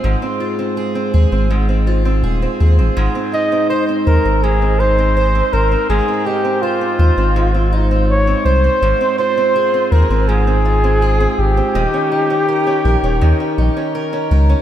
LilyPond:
<<
  \new Staff \with { instrumentName = "Flugelhorn" } { \time 4/4 \key aes \major \tempo 4 = 82 r1 | r8 ees''8 c''8 bes'8 aes'8 c''4 bes'8 | aes'8 g'8 f'4. r8 des''8 c''8~ | c''8 c''4 bes'8 aes'4. g'8~ |
g'2. r4 | }
  \new Staff \with { instrumentName = "Twelve-string acoustic guitar" } { \time 4/4 \key aes \major <aes, c' f' aes'>16 c'16 f'16 c'16 aes'16 c'16 aes'16 c'16 aes,16 c'16 f'16 c'16 aes'16 c'16 aes'16 c'16 | aes,16 c'16 ees'16 c'16 c''16 c'16 c''16 c'16 aes,16 c'16 ees'16 c'16 c''16 c'16 c''16 c'16 | aes,16 c'16 ees'16 c'16 c''16 c'16 c''16 c'16 aes,16 c'16 ees'16 c'8 c'16 c''16 c'16 | aes,16 c'16 f'16 c'16 aes'16 c'16 aes'16 c'16 aes,16 c'16 f'16 c'16 aes'16 c'8 c'16 |
ees16 des'16 ees'16 des'16 bes'16 des'16 bes'16 des'16 ees16 des'16 ees'16 des'16 bes'16 des'16 bes'16 des'16 | }
  \new Staff \with { instrumentName = "Sub bass" } { \clef bass \time 4/4 \key aes \major aes,,16 r4 r16 ees,16 aes,,4~ aes,,16 ees,,16 r16 ees,16 aes,,16 | aes,,16 r4 r16 ees,16 aes,,4. r16 aes,,16 r16 | aes,,16 r4 r16 ees,16 aes,,4. r16 c,16 r16 | aes,,16 r4 r16 ees,16 aes,,4. r16 aes,,16 r16 |
ees,,16 r4 r16 bes,,16 ees,,16 ees,16 r16 bes,,16 r8. des,16 r16 | }
>>